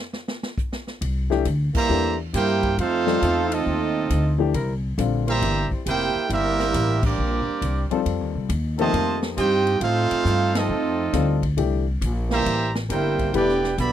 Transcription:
0.13 snare
0.28 snare
0.43 snare
0.58 kick, hi-hat pedal
0.73 snare
0.87 snare
1.01 C2, kick, ride
1.30 E3 A3 D4 G4, snare
1.45 D2, kick, hi-hat pedal, ride
1.74 E3 G3 A#3 G4 C5 E5 A#5, muted upright bass stroke, kick, crash
1.89 E2 E3 A3 D4 G4
2.34 G2 A#3 E4 G4 A#4 C5 G5, kick, snare, hi-hat pedal, ride
2.63 kick, ride
2.78 F2 A3 C4 D#4 F4 A4 C5 F5, kick, ride
3.06 G3 C4 F4 A4, snare
3.20 E2 C4 D#4 F4 A4, kick, hi-hat pedal, ride
3.51 A3 C4 D#4 F4 A4 D#5, ride
3.66 D#2, kick
4.10 D2, kick, hi-hat pedal, ride
4.38 E3 A3 D4 G4
4.54 C2 G3 C4 E4 A#4, kick, ride
4.98 A#1 D3 G3 C4 F4, kick, hi-hat pedal, ride
5.26 E3 G3 A#3 C4 E4 G4 C5 E5 A#5, ride
5.42 G1, kick, ride
5.71 muted upright bass stroke, kick
5.86 F1 A#3 E4 G4 A#4 C5 G5, kick, hi-hat pedal, ride
6.15 muted upright bass stroke
6.30 G1 G3 A#3 C4 E4 G4 A#4 E5, kick, ride
6.58 G3 C4 E4 A#4, snare
6.74 A1, kick, hi-hat pedal, ride
7.03 G3 A#3 C4 D4 G4 A#4 D5, kick, crash
7.18 A#1
7.47 muted upright bass stroke
7.62 C2, kick, hi-hat pedal, ride
7.90 F3 G3 C4 D#4 F4 A4, muted upright bass stroke, ride
8.06 F2, kick, ride
8.20 D#2
8.35 C2
8.49 D#2, kick, hi-hat pedal, ride
8.77 C3 D#3 F3 A3 A#3 C4 D#4 F4 G4 A4 C5 D#5 A5, ride
8.93 F2, kick, ride
9.22 snare
9.37 G2 C4 D#4 F4 G4 C5 D#5 G5, kick, hi-hat pedal, ride
9.67 ride
9.81 A2 A3 C4 D#4 F4 A4 C5 F5, kick, ride
10.11 muted upright bass stroke, ride
10.25 G2, kick, hi-hat pedal
10.54 F3 A3 C4 D#4 F4 A4 D#5, snare, ride
10.69 F2
11.13 D2 G3 C4 F4 A4, kick, snare, hi-hat pedal, ride
11.43 kick, ride
11.57 C2 E3 A3 D4 G4, kick, ride
12.01 A#1, kick, hi-hat pedal, ride
12.30 E3 G3 A#3 G4 C5 E5 A#5, snare
12.46 A1, kick, ride
12.75 snare
12.89 G1 G3 A#3 C4 E4 G4 A#4 C5 G5, kick, hi-hat pedal, ride
13.19 kick, ride
13.34 E1 E3 G3 A3 B3 D4 E4 G4 B4 D5 G5, kick, ride
13.49 snare
13.64 snare
13.78 B1 D3 G3 B3 G4 D5 E5 B5, kick, hi-hat pedal, ride

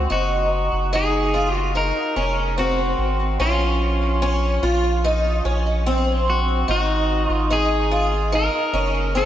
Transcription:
0.10 F#1 D#4 F#4
0.72 F#1
0.93 D#4 G#4
1.34 F4
1.55 F#4
1.75 D#4 A#4
2.16 F1 C#4
2.58 C4 F#4
2.98 G#1
3.39 A#1 C#4 F4
4.22 C#4
4.62 A#1 F4
5.04 D#4
5.45 A#1 C#4
5.86 C4
6.30 F#4
6.68 G#1 D#4 F#4
7.28 G#1 F4
7.51 D#4 G#4
7.91 F4
8.32 D#4 A#4
8.73 F#1 C#4
9.15 C4 A#4

